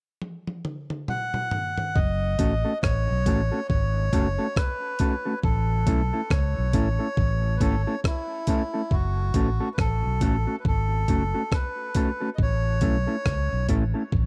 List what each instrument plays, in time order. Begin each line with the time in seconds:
0.22 high tom
0.47 high tom
0.65 mid tom
0.90 mid tom
1.08 melodica F#5, mid tom
1.34 mid tom
1.51 floor tom
1.77 floor tom
1.95 fretless electric bass F#1, melodica D#5, kick
2.38 fretless electric bass A1, clean electric guitar A3 C#4 F#4 A4, kick, closed hi-hat
2.65 clean electric guitar A3 C#4 F#4 A4
2.83 fretless electric bass A1, melodica C#5, kick, cross-stick
3.11 fretless electric bass B1
3.26 fretless electric bass A1, clean electric guitar A3 C#4 F#4 A4, kick, closed hi-hat
3.52 clean electric guitar A3 C#4 F#4 A4
3.69 fretless electric bass G#1, melodica C#5, kick
4.13 fretless electric bass F#1, clean electric guitar A3 C#4 F#4 A4, kick, closed hi-hat
4.39 clean electric guitar A3 C#4 F#4 A4
4.56 melodica B4, kick, cross-stick
4.99 clean electric guitar A3 C#4 F#4 A4, kick, closed hi-hat
5.25 clean electric guitar A3 C#4 F#4 A4
5.44 fretless electric bass A1, melodica A4, kick
5.87 fretless electric bass B1, clean electric guitar A3 C#4 E4 A4, kick, closed hi-hat
6.13 clean electric guitar A3 C#4 E4 A4
6.30 fretless electric bass C#2, melodica C#5, kick, cross-stick
6.58 fretless electric bass B1
6.73 fretless electric bass A1, clean electric guitar A3 C#4 E4 A4, kick, closed hi-hat
6.99 clean electric guitar A3 C#4 E4 A4
7.17 fretless electric bass A1, kick
7.57 melodica B4, kick
7.61 fretless electric bass G#1, clean electric guitar A3 C#4 E4 A4, melodica A4, closed hi-hat
7.87 clean electric guitar A3 C#4 E4 A4
8.04 melodica E4, kick, cross-stick
8.47 clean electric guitar A3 C#4 E4 A4, kick, closed hi-hat
8.74 clean electric guitar A3 C#4 E4 A4
8.91 fretless electric bass F#1, melodica F#4, kick
9.34 fretless electric bass A1, clean electric guitar A3 C#4 F#4 A4, kick, closed hi-hat
9.60 clean electric guitar A3 C#4 F#4 A4
9.74 melodica B4
9.78 fretless electric bass A1, melodica A4, kick, cross-stick
10.05 fretless electric bass B1
10.21 fretless electric bass A1, clean electric guitar A3 C#4 F#4 A4, kick, closed hi-hat
10.47 clean electric guitar A3 C#4 F#4 A4
10.60 melodica B4
10.65 fretless electric bass G#1, melodica A4, kick
11.08 fretless electric bass F#1, clean electric guitar A3 C#4 F#4 A4, kick, closed hi-hat
11.34 clean electric guitar A3 C#4 F#4 A4
11.52 melodica B4, kick, cross-stick
11.95 clean electric guitar A3 C#4 F#4 A4, kick, closed hi-hat
12.20 clean electric guitar A3 C#4 F#4 A4
12.35 melodica D#5, kick
12.40 fretless electric bass A1, melodica C#5
12.81 fretless electric bass B1, clean electric guitar A3 C#4 E4 A4, kick, closed hi-hat
13.07 clean electric guitar A3 C#4 E4 A4
13.26 fretless electric bass C#2, kick, cross-stick
13.52 fretless electric bass B1
13.69 fretless electric bass A1, clean electric guitar A3 C#4 E4 A4, kick, closed hi-hat
13.94 clean electric guitar A3 C#4 E4 A4
14.12 fretless electric bass A1, kick